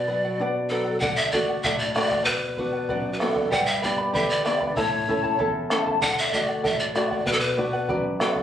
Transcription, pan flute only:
0.00 0.40 D5 medium
0.69 0.99 A4 medium
1.00 1.18 F#5 medium
1.16 1.33 E5 medium
1.32 1.64 D5 medium
1.63 1.80 E5 medium
1.79 1.93 D5 medium
1.94 2.27 D5 medium
2.25 3.13 B4 loud
3.13 3.21 B4 medium
3.20 3.53 A4 medium
3.52 3.66 F#5 loud
3.66 3.85 E5 medium
3.83 4.14 D5 medium
4.15 4.29 E5 medium
4.30 4.44 D5 medium
4.45 4.74 D5 medium
4.76 5.39 C#5 loud
5.71 5.78 A4 medium
6.02 6.20 F#5 medium
6.18 6.35 E5 medium
6.33 6.64 D5 medium
6.65 6.79 E5 medium
6.79 6.85 D5 medium
6.95 7.24 D5 medium
7.26 7.34 B4 medium
7.32 7.42 A4 medium
7.40 7.90 B4 medium
8.21 8.43 A4 medium

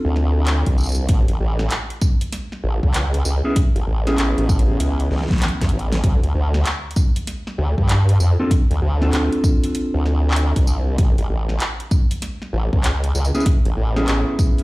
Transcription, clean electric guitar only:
0.00 1.07 C4 medium
0.00 1.07 D4 medium
0.00 1.07 F4 medium
0.00 1.07 A4 loud
3.44 3.57 B3 medium
3.44 3.57 C#4 medium
3.44 3.57 E4 medium
3.44 3.57 G#4 loud
4.07 6.02 B3 loud
4.07 6.02 C#4 medium
4.07 6.02 E4 medium
4.07 6.02 G#4 loud
8.40 8.52 C4 loud
8.40 8.52 D4 medium
8.40 8.52 F4 medium
8.40 8.52 A4 loud
9.01 10.97 C4 medium
9.01 10.97 D4 medium
9.01 10.97 F4 medium
9.01 10.97 A4 loud
13.34 13.47 B3 loud
13.34 13.47 C#4 medium
13.34 13.47 E4 medium
13.34 13.47 G#4 loud
13.96 14.63 B3 medium
13.96 14.63 C#4 medium
13.96 14.63 E4 medium
13.96 14.63 G#4 loud

